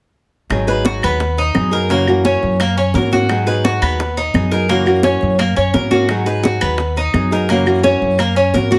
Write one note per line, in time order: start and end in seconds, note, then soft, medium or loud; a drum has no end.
0.50 0.99 G#1 medium
0.50 0.67 D#3 medium
0.50 0.67 F#3 medium
0.50 0.67 B3 medium
0.50 0.67 D#4 medium
0.50 0.66 G#4 medium
0.50 high bongo medium
0.50 high conga soft
0.50 claves medium
0.67 1.20 F#3 medium
0.67 1.19 B3 medium
0.67 1.19 D#4 medium
0.67 1.19 G#4 medium
0.67 0.85 B4 medium
0.67 high conga soft
0.85 1.02 F#4 medium
0.85 high bongo medium
0.85 high conga medium
1.02 1.52 D#2 medium
1.02 1.37 B3 medium
1.02 high bongo soft
1.02 high conga soft
1.02 claves medium
1.20 muted nylon-string guitar stroke medium
1.20 high bongo medium
1.20 high conga soft
1.37 1.72 D#4 medium
1.37 high bongo soft
1.37 high conga soft
1.54 2.37 F#2 medium
1.54 1.71 F#3 soft
1.54 1.72 B3 soft
1.54 1.71 D#4 soft
1.54 1.70 G#4 soft
1.54 high bongo soft
1.54 low bongo medium
1.54 high conga medium
1.54 claves medium
1.71 1.90 F#3 medium
1.71 1.89 B3 medium
1.71 1.89 D#4 medium
1.71 1.89 G#4 medium
1.71 1.90 A#4 medium
1.71 high bongo soft
1.71 high conga soft
1.89 2.06 C#3 medium
1.89 2.07 E3 medium
1.89 2.07 A#3 medium
1.89 2.24 A#3 medium
1.89 2.07 C#4 medium
1.89 2.07 F#4 medium
1.89 high bongo medium
1.89 high conga soft
2.08 2.59 E3 medium
2.08 2.59 A#3 medium
2.08 2.59 C#4 medium
2.08 2.60 F#4 medium
2.08 high conga soft
2.08 claves medium
2.25 2.59 C#4 medium
2.25 high bongo medium
2.25 high conga medium
2.43 2.91 F#2 medium
2.43 high bongo soft
2.60 2.77 A#3 medium
2.60 muted nylon-string guitar stroke medium
2.60 high bongo medium
2.60 high conga soft
2.60 claves medium
2.78 2.94 C#4 medium
2.78 high bongo soft
2.78 high conga soft
2.94 3.76 G#2 medium
2.94 3.12 E3 soft
2.94 3.12 A#3 medium
2.94 3.11 C#4 soft
2.94 3.11 F#4 soft
2.94 3.12 A#4 medium
2.94 high bongo soft
2.94 low bongo medium
2.94 high conga medium
3.12 3.29 E3 medium
3.12 3.30 A#3 medium
3.12 3.29 C#4 medium
3.12 3.29 F#4 medium
3.12 3.46 F#4 medium
3.12 high bongo soft
3.12 high conga medium
3.29 3.46 D#3 medium
3.29 3.46 F#3 medium
3.29 3.47 B3 medium
3.29 3.46 D#4 medium
3.29 3.45 G#4 medium
3.29 high bongo medium
3.29 high conga soft
3.29 claves medium
3.46 4.00 F#3 medium
3.46 3.99 B3 medium
3.46 3.99 D#4 medium
3.46 3.98 G#4 medium
3.46 3.64 B4 medium
3.46 high conga soft
3.65 3.82 F#4 medium
3.65 high bongo medium
3.65 high conga medium
3.82 4.31 D#2 medium
3.82 4.16 B3 medium
3.82 high bongo soft
3.82 high conga soft
3.82 claves medium
3.99 muted nylon-string guitar stroke medium
3.99 high bongo medium
3.99 high conga soft
4.17 4.51 D#4 medium
4.17 high bongo soft
4.17 high conga soft
4.34 5.16 F#2 medium
4.34 4.51 F#3 soft
4.34 4.51 B3 medium
4.34 4.51 D#4 medium
4.34 4.51 G#4 medium
4.34 high bongo soft
4.34 low bongo medium
4.34 high conga medium
4.34 claves medium
4.51 4.69 F#3 medium
4.51 4.69 B3 medium
4.51 4.69 D#4 medium
4.51 4.69 G#4 medium
4.51 4.69 A#4 medium
4.51 high bongo soft
4.69 4.86 C#3 medium
4.69 4.86 E3 medium
4.69 5.03 A#3 medium
4.69 4.86 A#3 medium
4.69 4.86 C#4 medium
4.69 4.85 F#4 medium
4.69 high bongo medium
4.69 high conga soft
4.86 5.37 E3 medium
4.86 5.38 A#3 medium
4.86 5.38 C#4 medium
4.86 5.39 F#4 medium
4.86 high conga soft
4.86 claves medium
5.03 5.38 C#4 medium
5.03 high bongo medium
5.03 high conga medium
5.21 5.55 F#2 medium
5.21 high bongo soft
5.38 5.56 A#3 medium
5.38 muted nylon-string guitar stroke medium
5.38 high bongo medium
5.38 high conga soft
5.38 claves medium
5.56 5.73 F#2 medium
5.56 5.74 C#4 medium
5.56 high bongo soft
5.56 high conga soft
5.73 6.56 G#2 medium
5.73 5.91 E3 soft
5.73 5.91 A#3 medium
5.73 5.90 C#4 medium
5.73 5.90 F#4 medium
5.73 5.91 A#4 medium
5.73 high bongo soft
5.73 low bongo medium
5.73 high conga medium
5.91 6.09 E3 soft
5.91 6.09 A#3 medium
5.91 6.08 C#4 medium
5.91 6.25 F#4 medium
5.91 6.08 F#4 medium
5.91 high bongo soft
5.91 high conga medium
6.09 6.26 D#3 medium
6.09 6.26 F#3 medium
6.09 6.26 B3 medium
6.09 6.25 D#4 medium
6.09 6.25 G#4 medium
6.09 high bongo medium
6.09 high conga soft
6.09 claves medium
6.26 6.79 F#3 medium
6.26 6.78 B3 medium
6.26 6.78 D#4 medium
6.26 6.78 G#4 medium
6.26 6.43 B4 medium
6.26 high conga soft
6.43 6.61 F#4 medium
6.43 high bongo medium
6.43 high conga medium
6.61 7.11 D#2 medium
6.61 6.95 B3 medium
6.61 high bongo soft
6.61 high conga soft
6.61 claves medium
6.78 muted nylon-string guitar stroke medium
6.78 high bongo medium
6.78 high conga soft
6.96 7.31 D#4 medium
6.96 high bongo soft
6.96 high conga soft
7.14 7.96 F#2 medium
7.14 7.31 F#3 soft
7.14 7.31 B3 medium
7.14 7.31 D#4 medium
7.14 7.31 G#4 medium
7.14 high bongo soft
7.14 low bongo medium
7.14 high conga medium
7.14 claves medium
7.31 7.49 F#3 medium
7.31 7.49 B3 medium
7.31 7.49 D#4 medium
7.31 7.48 G#4 medium
7.31 7.49 A#4 medium
7.31 high bongo soft
7.31 high conga soft
7.49 7.66 C#3 medium
7.49 7.66 E3 medium
7.49 7.83 A#3 medium
7.49 7.66 A#3 medium
7.49 7.66 C#4 medium
7.49 7.65 F#4 medium
7.49 high bongo medium
7.49 high conga soft
7.66 8.17 E3 medium
7.66 8.17 A#3 medium
7.66 8.18 C#4 medium
7.66 8.19 F#4 medium
7.66 high conga soft
7.66 claves medium
7.83 8.18 C#4 medium
7.83 high bongo medium
7.83 high conga medium
8.02 8.50 F#2 medium
8.02 high bongo soft
8.18 8.36 A#3 medium
8.18 muted nylon-string guitar stroke medium
8.18 high bongo medium
8.18 high conga soft
8.18 claves medium
8.36 8.53 C#4 medium
8.36 high bongo soft
8.36 high conga soft
8.54 8.79 G#2 medium
8.54 8.71 E3 soft
8.54 8.71 A#3 medium
8.54 8.70 C#4 medium
8.54 8.69 F#4 medium
8.54 8.71 A#4 medium
8.54 high bongo soft
8.54 low bongo medium
8.54 high conga medium
8.71 8.79 E3 medium
8.71 8.79 A#3 medium
8.71 8.79 C#4 medium
8.71 8.79 F#4 medium
8.71 high bongo soft
8.71 high conga medium